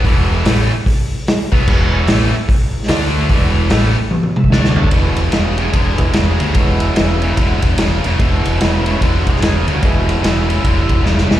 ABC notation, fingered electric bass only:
X:1
M:4/4
L:1/8
Q:"Swing" 1/4=147
K:Emix
V:1 name="Fingered electric bass" clef=bass
E,,,2 A,,, z4 B,,, | E,,,2 A,,, z3 D,,2 | E,,,2 A,,, z3 D,,2 | E,,, E,,, E,,,2 E,,, E,,, E,,, D,, |
E,,,2 E,,,2 E,,, E,,, E,,, E,,, | E,,, E,,, E,,,2 E,,, E,,, E,,, D,, | E,,,2 E,,,2 E,,, E,,, E,,, E,,, |]